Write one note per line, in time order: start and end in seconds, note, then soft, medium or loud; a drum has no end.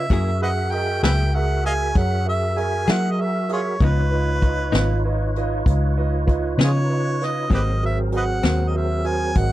0.00 0.38 E5 medium
0.09 0.99 F#2 medium
0.09 0.29 F#3 medium
0.09 0.29 A#3 medium
0.09 0.30 E4 medium
0.09 3.77 F#4 medium
0.09 0.33 G#4 medium
0.09 3.77 G#4 medium
0.09 0.30 G#4 medium
0.09 3.77 A#4 medium
0.09 0.33 A#4 medium
0.09 0.33 E5 medium
0.09 3.78 E5 medium
0.09 kick medium
0.09 closed hi-hat medium
0.42 0.65 G#4 soft
0.42 0.65 A#4 soft
0.42 0.49 B4 medium
0.42 0.50 D#5 medium
0.42 0.65 E5 soft
0.42 0.73 F#5 medium
0.72 0.95 G#4 medium
0.72 0.95 A#4 soft
0.72 0.95 D#5 medium
0.72 1.03 G5 medium
0.72 closed hi-hat medium
1.03 1.92 C#2 medium
1.03 1.23 F#3 soft
1.03 1.23 A#3 medium
1.03 1.22 E4 medium
1.03 1.22 G#4 medium
1.03 1.26 G#4 medium
1.03 1.27 A#4 soft
1.03 1.12 B4 medium
1.03 1.12 E5 medium
1.03 1.27 E5 medium
1.03 1.36 G5 medium
1.03 snare loud
1.03 closed hi-hat medium
1.34 1.58 G#4 soft
1.34 1.58 A#4 soft
1.34 1.58 E5 medium
1.34 1.65 F#5 medium
1.64 1.88 G#4 medium
1.64 1.88 A#4 soft
1.64 1.72 D#5 medium
1.64 1.88 E5 medium
1.64 1.73 F5 medium
1.64 1.99 G#5 medium
1.64 closed hi-hat medium
1.95 2.84 F#2 medium
1.95 2.18 G#4 soft
1.95 2.19 A#4 soft
1.95 2.19 C#5 medium
1.95 2.27 F#5 medium
1.95 kick medium
1.95 closed hi-hat medium
2.25 2.49 G#4 soft
2.25 2.49 A#4 soft
2.25 2.49 E5 soft
2.25 2.61 E5 medium
2.57 2.80 G#4 soft
2.57 2.80 A#4 soft
2.57 2.81 E5 medium
2.57 2.92 G#5 medium
2.57 closed hi-hat medium
2.88 3.77 F#3 medium
2.88 3.08 F#3 soft
2.88 3.08 A#3 medium
2.88 3.07 E4 medium
2.88 3.07 G#4 medium
2.88 3.11 G#4 soft
2.88 3.12 A#4 soft
2.88 3.12 E5 medium
2.88 3.12 F#5 medium
2.88 snare medium
2.88 closed hi-hat medium
3.11 3.22 D#5 medium
3.18 3.42 G#4 soft
3.18 3.42 A#4 soft
3.18 3.42 E5 medium
3.18 3.51 E5 medium
3.49 3.60 F4 soft
3.49 3.73 G#4 soft
3.49 3.60 G#4 soft
3.49 3.73 A#4 soft
3.49 3.86 C#5 medium
3.49 3.73 E5 medium
3.49 closed hi-hat medium
3.80 4.70 C#2 medium
3.80 4.00 C#3 medium
3.80 4.00 F3 medium
3.80 4.01 B3 medium
3.80 7.49 D#4 medium
3.80 4.01 D#4 medium
3.80 4.04 F4 medium
3.80 7.48 F4 medium
3.80 4.04 B4 medium
3.80 7.49 B4 medium
3.80 7.48 C#5 medium
3.80 4.04 D#5 medium
3.80 kick loud
3.80 closed hi-hat medium
3.84 5.06 B4 medium
4.11 4.35 F4 soft
4.11 4.35 B4 soft
4.11 4.35 D#5 medium
4.42 4.66 F4 soft
4.42 4.66 B4 soft
4.42 4.66 D#5 medium
4.42 kick medium
4.42 closed hi-hat soft
4.72 5.62 G#1 medium
4.72 4.93 C#3 soft
4.72 4.92 F3 medium
4.72 4.92 B3 medium
4.72 4.91 D#4 medium
4.72 4.97 F4 medium
4.72 4.97 B4 medium
4.72 4.97 D#5 medium
4.72 snare loud
4.72 closed hi-hat medium
5.05 5.28 F4 medium
5.05 5.28 B4 soft
5.05 5.28 D#5 medium
5.36 5.59 F4 medium
5.36 5.59 B4 soft
5.36 5.59 D#5 medium
5.36 closed hi-hat soft
5.66 6.55 C#2 medium
5.66 5.89 F4 medium
5.66 5.90 B4 soft
5.66 5.89 D#5 medium
5.66 kick medium
5.66 closed hi-hat medium
5.97 6.20 F4 medium
5.97 6.21 B4 soft
5.97 6.20 D#5 medium
6.26 6.50 F4 medium
6.26 6.51 B4 medium
6.26 6.51 D#5 medium
6.26 kick medium
6.26 closed hi-hat medium
6.58 7.47 C#3 medium
6.58 6.78 C#3 soft
6.58 6.78 F3 medium
6.58 6.77 B3 medium
6.58 6.77 D#4 medium
6.58 6.82 F4 soft
6.58 6.82 B4 soft
6.58 6.82 D#5 medium
6.58 snare medium
6.58 closed hi-hat medium
6.64 6.70 F4 soft
6.64 6.71 G#4 soft
6.64 7.27 C#5 medium
6.90 7.13 F4 soft
6.90 7.13 B4 soft
6.90 7.13 D#5 soft
7.21 7.44 F4 soft
7.21 7.44 B4 soft
7.21 7.44 D#5 medium
7.21 snare soft
7.21 closed hi-hat soft
7.25 7.54 D#5 medium
7.50 8.40 G#1 medium
7.50 7.69 G#2 medium
7.50 9.52 F#3 medium
7.50 7.70 F#3 medium
7.50 7.70 A#3 medium
7.50 9.52 C4 medium
7.50 7.71 C4 medium
7.50 7.76 F#4 medium
7.50 9.52 G#4 medium
7.50 9.52 A#4 medium
7.50 7.76 A#4 soft
7.50 7.75 C5 medium
7.50 kick medium
7.50 closed hi-hat medium
7.54 7.61 G4 soft
7.54 7.63 B4 soft
7.54 7.82 D#5 medium
7.83 8.06 F#4 soft
7.83 8.06 A#4 soft
7.83 8.06 C5 soft
7.83 7.99 E5 medium
8.12 8.36 F#4 soft
8.12 8.36 A#4 soft
8.12 8.36 C5 medium
8.12 closed hi-hat medium
8.17 8.23 B4 medium
8.17 8.24 D#5 medium
8.17 8.70 F#5 medium
8.43 9.32 D#2 medium
8.43 8.63 G#2 soft
8.43 8.63 F#3 medium
8.43 8.63 A#3 medium
8.43 8.62 C4 medium
8.43 8.68 F#4 soft
8.43 8.67 A#4 soft
8.43 8.68 C5 medium
8.43 snare loud
8.43 closed hi-hat medium
8.68 8.78 D#5 medium
8.74 8.98 F#4 soft
8.74 8.98 A#4 soft
8.74 8.98 C5 medium
8.74 9.08 E5 medium
9.04 9.28 F#4 medium
9.04 9.28 A#4 soft
9.04 9.29 C5 medium
9.04 9.39 G#5 medium
9.04 closed hi-hat medium
9.35 9.52 G#1 medium
9.35 9.52 F#4 soft
9.35 9.52 A#4 soft
9.35 9.52 D#5 medium
9.35 9.52 F#5 medium
9.35 kick medium
9.35 closed hi-hat medium